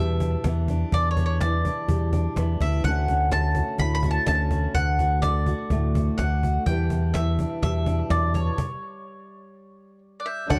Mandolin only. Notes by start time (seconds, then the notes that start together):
Already playing: E5
0.94 D5
1.11 C#5
1.26 C#5
1.41 D5
2.62 E5
2.85 F#5
3.33 A5
3.79 B5
3.95 B5
4.11 A5
4.27 A5
4.75 F#5
5.22 D5
6.18 F#5
6.66 G5
7.14 E5
7.63 E5
8.11 D5
8.35 C#5
10.20 D5
10.26 E5
10.50 F#5